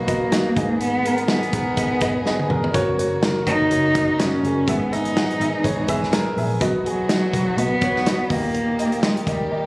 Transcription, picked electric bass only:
Already playing: B1
0.57 G#1
1.53 G#1
1.77 G#1
2.50 E1
2.74 F#1
3.47 F#1
3.71 F#1
4.43 F#1
4.67 G#1
5.40 G#1
5.64 G#1
6.37 A#1
6.61 B1
7.33 B1
7.57 B1
8.30 D#2
9.27 D#2

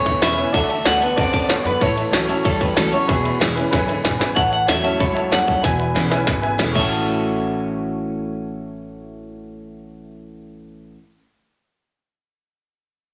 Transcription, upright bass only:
0.21 E2
0.54 D2
0.85 D2
1.18 F#2
1.49 D2
1.65 F#2
1.82 A1
2.12 C#2
2.45 D2
2.77 C#2
3.09 E1
3.41 E1
3.73 G#1
4.04 E1
4.20 G#1
4.37 A1
4.68 E2
5.00 C#2
5.32 D#2
5.64 E1
5.95 B1
6.28 G#1
6.60 E1
6.76 A1

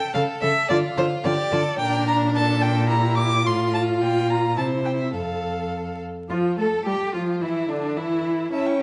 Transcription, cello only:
0.14 C#3
0.42 C#3
0.70 D3
0.97 D3
1.25 D3
1.52 D3
1.80 A#2
3.46 A2
4.02 A#2
4.58 C3
5.14 F2
6.30 F4
6.58 A4
6.86 G4
7.14 F4
7.42 E4
7.69 D4
7.97 E4
8.53 E4

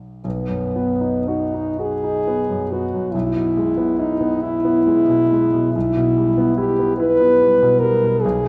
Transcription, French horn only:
0.26 B3
1.28 D#4
1.80 G#4
2.72 F#4
3.13 E4
3.99 D#4
4.42 E4
5.73 E4
6.58 G4
6.98 B4
7.80 A#4
8.22 G#4

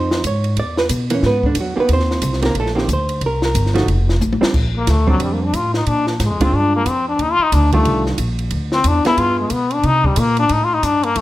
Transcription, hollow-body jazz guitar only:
Already playing: F3 C4 D#4 C5
0.27 C#5
0.60 D5
0.78 B4
1.11 E3 A#3 C#4
1.26 B3 B4
1.46 D3 D4
1.60 F#3 F#4
1.76 D#3 A#3 C4 G4
1.80 B3 B4
1.93 C4 C5
2.42 D#3 A#3 C4 G4 A#4
2.46 A#3
2.60 A3 A4
2.75 D#3 A#3 C4 G4
2.93 C5
3.26 A#4
3.45 A#4
3.74 F3 A3 D#4 F#4
4.41 G3 C4 D4
5.07 G3 C4 D4
6.41 G#3 D4 F4
7.73 D#3 G3 D4 F4
9.06 B3 F4 G#4

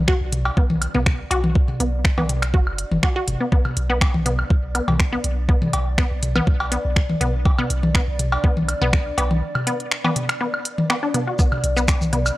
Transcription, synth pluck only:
0.08 F#4
0.57 B3
0.95 B3
1.31 F#4
1.80 B3
2.18 B3
2.54 F#4
3.03 F#4
3.16 F#4
3.41 B3
3.52 B3
3.90 B3
4.26 B3
4.75 B3
5.13 B3
5.49 B3
5.98 B3
6.36 B3
6.72 B3
7.21 B3
7.59 B3
7.95 B3
8.44 B3
8.81 B3
9.18 B3
9.67 B3
10.04 B3
10.41 B3
10.90 B3
11.03 D4
11.14 B3
11.27 F#4
11.39 B3
11.77 B3
12.13 B3

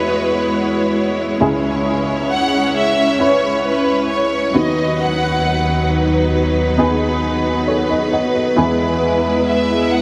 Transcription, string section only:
Already playing: G#3 B3 E4 C#5
1.41 C#4 C#5
4.55 D#2 F#3 B3 D#4 B4
8.57 G#3 E4

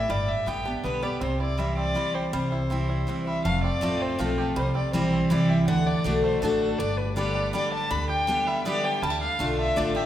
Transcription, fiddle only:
Already playing: E5
0.10 D5
0.29 E5
0.48 G5
0.84 B4
1.03 D5
1.22 C5
1.40 D5
1.59 E5
1.77 D5
2.14 C5
2.33 C5
3.26 E5
3.44 F5
3.63 D5
4.01 C5
4.20 A4
4.38 A4
4.57 C5
4.75 D5
4.94 C5
5.31 D5
5.49 E5
5.67 F#5
5.86 D5
6.23 C5
6.42 A4
6.60 A4
6.79 D5
6.97 B4
7.16 D5
7.54 D5
7.72 A5
7.91 B5
8.09 G5
8.47 E5
8.66 D5
8.84 G5
9.02 A5
9.21 F5
9.58 E5
9.77 D5
9.96 E5

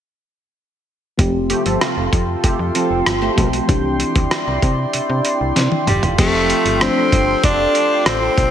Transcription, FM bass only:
1.19 F1
1.66 G1
1.97 F1
2.13 F2
2.44 F2
2.59 F2
2.90 F1
3.06 G1
3.38 B1
3.69 C2
4.16 D2
4.47 C2
4.62 C3
4.94 C3
5.10 C3
5.41 C2
5.56 C3
5.87 F1
6.03 E1
6.18 F1
6.65 G1
7.12 G1
7.44 F1
8.06 A1
8.38 B1

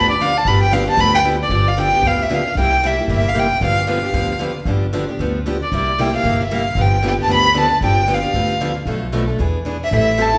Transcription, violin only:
0.10 D5
0.21 F5
0.37 A5
0.47 B5
0.62 G5
0.73 F5
0.90 A5
1.00 B5
1.14 G5
1.43 D5
1.53 D5
1.68 F5
1.81 G5
2.07 F5
2.22 E5
2.34 F5
2.60 G5
2.86 E5
3.13 E5
3.28 F5
3.39 G5
3.65 F5
3.90 F5
5.62 D5
5.75 D5
6.00 G5
6.17 F5
6.44 E5
6.55 F5
6.81 G5
7.08 G5
7.22 A5
7.34 B5
7.60 A5
7.85 G5
8.14 F5
9.84 E5
9.96 E5
10.21 A5

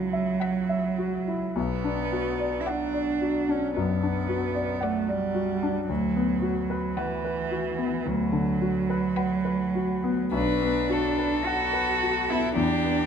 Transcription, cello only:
Already playing: F#3
1.56 B3
2.61 E4
2.68 D4
3.50 C#4
3.76 B3
4.83 A3
5.10 G3
5.88 F#3
6.97 E3
8.07 F#3
10.34 D4
11.45 F#4
12.30 E4
12.56 D4

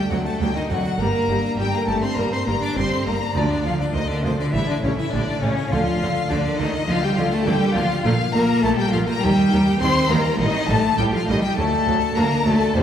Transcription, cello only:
0.11 F#3
0.25 A3
0.41 G3
0.55 D#3
0.70 F#3
1.00 A#3
1.59 G3
1.73 A#3
1.89 A3
2.03 C4
2.18 A#3
2.33 C4
2.47 A#3
2.62 D4
2.76 C4
3.06 A#3
3.35 D3
3.66 F3
3.79 D3
3.92 D#3
4.08 D3
4.22 C3
4.37 D3
4.53 E3
4.69 D3
4.82 C#3
4.98 E3
5.12 D3
5.42 C#3
5.72 F3
6.30 D3
6.59 D#3
6.86 F3
7.03 G3
7.16 F3
7.30 A3
7.45 G3
7.75 F3
8.05 F3
8.33 A#3
8.63 A3
8.78 G3
8.91 F3
9.06 A#3
9.20 G3
9.79 C4
10.09 A#3
10.38 D#3
10.69 A3
10.98 G3
11.13 F3
11.27 D#3
11.41 G3
11.57 A3
12.16 A#3
12.46 A3
12.76 C3

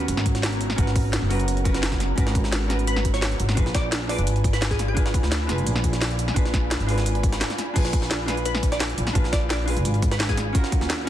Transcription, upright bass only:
0.08 G#1
0.78 G#1
1.22 F#1
2.18 G#1
3.40 G#1
3.57 A#1
4.19 F1
4.27 G#1
5.23 D2
5.49 F1
5.66 A#1
6.36 A#1
6.80 G#1
7.76 A#1
8.98 A#1
9.15 A#1
9.77 F1
9.85 G#1
10.81 D#2

